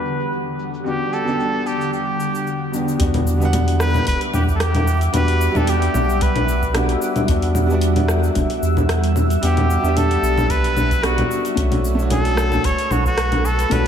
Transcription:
Already playing: E2 D3 G3 B3 D4 F#4 B4 F#5
0.05 cabasa
0.20 cabasa
0.32 cabasa
0.59 cabasa
0.74 cabasa
0.84 E2 G3 B3 D4 F#4 G4, cabasa
1.13 A4, cabasa
1.23 E2 G3
1.27 B3 D4 G4, cabasa
1.40 cabasa
1.67 G4, cabasa
1.81 cabasa
1.93 G4, cabasa
2.20 cabasa
2.35 cabasa
2.47 cabasa
2.72 E2 G3 B3 D4, cabasa
2.76 G4
2.88 cabasa
2.98 E2 G3 B3 D4 F#4 E5 F#5 D6, kick, open hi-hat, cabasa
3.14 open hi-hat, low conga
3.27 cabasa
3.37 G3 B3
3.41 D4 F#5, cabasa
3.53 open hi-hat, low conga, cabasa
3.68 open hi-hat
3.80 B4, cross-stick, cabasa
3.94 low conga, cabasa
4.07 E1 B4, kick, open hi-hat, cabasa
4.21 open hi-hat
4.34 E2 G4, low conga, cabasa
4.48 kick, cabasa
4.55 A4
4.60 G4, cross-stick, open hi-hat, cabasa
4.75 open hi-hat, low conga
4.87 cabasa
5.01 open hi-hat, cabasa
5.12 E2 G3 B3 D4 F#4 B4, open hi-hat, low conga, cabasa
5.28 open hi-hat
5.41 cabasa
5.52 E2 G3 B3, low conga
5.56 D4 G4 A4, cabasa
5.67 G4, open hi-hat, cabasa
5.82 open hi-hat
5.94 B1, low conga, cabasa
6.10 cabasa
6.21 B4, kick, open hi-hat, cabasa
6.36 open hi-hat, low conga
6.49 cabasa
6.63 kick, cabasa
6.73 G3 B3 D4 F#4, cross-stick, open hi-hat, low conga, cabasa
6.89 open hi-hat
7.02 cabasa
7.16 open hi-hat, low conga, cabasa
7.27 E2 G3 B3 D4 F#4 E6, kick, open hi-hat, cabasa
7.42 open hi-hat
7.55 low conga, cabasa
7.66 G3 B3, cabasa
7.72 D4 F#4
7.81 open hi-hat, cabasa
7.96 open hi-hat, low conga
8.08 cross-stick, cabasa
8.23 cabasa
8.35 E1, kick, open hi-hat, low conga, cabasa
8.50 open hi-hat
8.62 E2, cabasa
8.77 kick, low conga, cabasa
8.89 cross-stick, open hi-hat, cabasa
9.04 open hi-hat
9.16 low conga, cabasa
9.30 open hi-hat, cabasa
9.41 E2 G3 B3 D4 G4 F#5, open hi-hat, cabasa
9.57 open hi-hat, low conga
9.70 cabasa
9.81 E2 G3 B3, cabasa
9.86 D4 G4
9.97 A4, open hi-hat, low conga, cabasa
10.11 open hi-hat
10.22 B1, cabasa
10.38 low conga, cabasa
10.50 B4, kick, open hi-hat, cabasa
10.64 open hi-hat
10.77 low conga, cabasa
10.91 kick, open hi-hat, cabasa
11.02 G3 B3 D4 F#4, cross-stick, open hi-hat, cabasa
11.18 open hi-hat, low conga
11.31 cabasa
11.45 open hi-hat, cabasa
11.55 B1 A3 C#4 D4 F#4 A4 B4 B5, kick, open hi-hat, cabasa
11.72 open hi-hat, low conga
11.85 cabasa
11.95 A3 C#4
11.99 D4 F#4, cabasa
12.10 A4, open hi-hat, low conga, cabasa
12.25 open hi-hat
12.37 cross-stick, cabasa
12.52 low conga, cabasa
12.64 F#1 C#5, kick, open hi-hat, cabasa
12.79 open hi-hat
12.90 B1 F#4, low conga, cabasa
13.06 F#4, kick, cabasa
13.18 cross-stick, open hi-hat, cabasa
13.32 open hi-hat, low conga
13.45 A4, cabasa
13.59 open hi-hat, cabasa
13.70 B1 A3 C#4 D4 F#4 B4, open hi-hat, low conga, cabasa

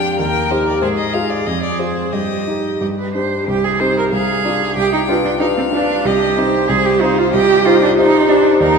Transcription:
Already playing: F2 D4 G4 G5
0.19 D#2 A#4 G5
0.50 D#4 G4 C5
0.66 D5
0.81 G#2 G#4 C5
0.98 D#5
1.13 F4 G#4 F5
1.30 D5
1.46 F2 G#4 D#5
1.63 D5
1.79 F4 G#4 C5
2.13 G2 G4 D#5
2.48 D#4 G4
2.81 G2 G4
2.98 B4
3.14 D4 G4 C5
3.47 C2 G4
3.64 G#4
3.80 C4 D#4 G4 C5
3.98 A#4
4.12 C2 G#4 F5
4.44 D4 F4 D5
4.76 C2 G4 G5
4.94 D#4
5.09 D4 F4 B4
5.25 D4
5.40 D4 D#4 F4 B4 F5
5.57 C4
5.72 D4 F4 B4
6.05 C2 G4 D#5
6.37 C4 D#4 C5
6.69 C2 G#4
6.86 G4
7.01 C4 D#4 F4 C5
7.18 F4
7.33 C2 G4 D#5
7.66 D#4 F4 G4 C5
7.82 D4
7.97 D#4 G4 C5
8.28 D4 D#4 G4 C5
8.60 D#2 D#4 A#4

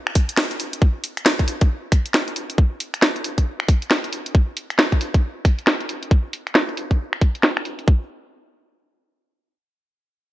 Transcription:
0.07 finger snap
0.15 kick, open hi-hat
0.29 closed hi-hat
0.37 snare
0.51 closed hi-hat
0.60 open hi-hat
0.73 closed hi-hat
0.82 kick
1.04 open hi-hat
1.17 finger snap, closed hi-hat
1.26 snare
1.39 kick, closed hi-hat
1.48 open hi-hat
1.61 kick, closed hi-hat
1.92 finger snap, kick, open hi-hat
2.06 closed hi-hat
2.14 snare
2.28 closed hi-hat
2.36 open hi-hat
2.50 closed hi-hat
2.58 kick
2.80 open hi-hat
2.94 finger snap, closed hi-hat
3.02 snare
3.16 closed hi-hat
3.24 open hi-hat
3.38 kick, closed hi-hat
3.60 finger snap
3.68 kick, open hi-hat
3.82 closed hi-hat
3.91 snare
4.04 closed hi-hat
4.13 open hi-hat
4.26 closed hi-hat
4.35 kick
4.57 open hi-hat
4.70 finger snap, closed hi-hat
4.79 snare
4.92 kick, closed hi-hat
5.01 open hi-hat
5.14 kick, closed hi-hat
5.45 finger snap, kick, open hi-hat
5.59 closed hi-hat
5.67 snare
5.81 closed hi-hat
5.89 open hi-hat
6.03 closed hi-hat
6.11 kick
6.33 open hi-hat
6.47 finger snap, closed hi-hat
6.55 snare
6.69 closed hi-hat
6.77 open hi-hat
6.91 kick, closed hi-hat
7.13 finger snap, closed hi-hat
7.21 kick, open hi-hat
7.35 closed hi-hat
7.43 snare
7.57 finger snap, closed hi-hat
7.65 open hi-hat
7.79 closed hi-hat
7.88 kick

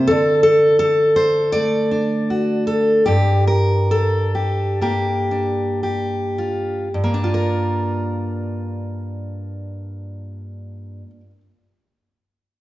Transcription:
Already playing: C3 A#3
0.07 D3 A4
0.43 A4
0.79 A4
1.16 C5
1.52 A3 D5
1.91 D4
2.30 F#4
2.67 A4
3.06 G2 G4
3.47 A#4
3.91 A4
4.35 G4
4.81 A#3 G4
5.31 D4
5.83 G4
6.38 F4
6.94 G2
7.04 A#3
7.14 D4
7.24 F4
7.34 A#4

